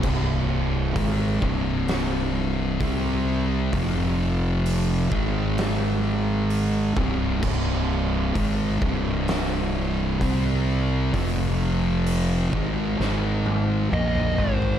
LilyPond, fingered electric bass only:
\new Staff \with { instrumentName = "Fingered electric bass" } { \clef bass \time 4/4 \key c \minor \tempo 4 = 65 c,,4 aes,,8 c,,4. c,4 | f,,4. aes,,2 c,,8 | c,,4 aes,,8 c,,4. c,4 | f,,4. aes,,8 aes,,4 bes,,8 aes,,8 | }